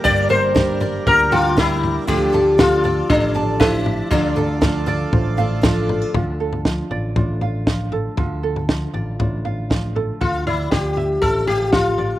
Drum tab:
SD |----o-------o---|----o-------o---|----o-------o---|----o-------o---|
FT |o-o-o-o-o-o-o-o-|o-o-o-o-o-o-o-o-|o-o-o-o-o-o-o-o-|o--o--o-o-o---o-|
BD |o---o---o---o---|o---o---o---o---|o---o---o---o---|o---o---o---o---|

SD |----o-------o---|----o-------o---|
FT |o--o--o-o-o---o-|o-o-o-o-o-o-o-o-|
BD |o---o---o---o---|o---o---o---o---|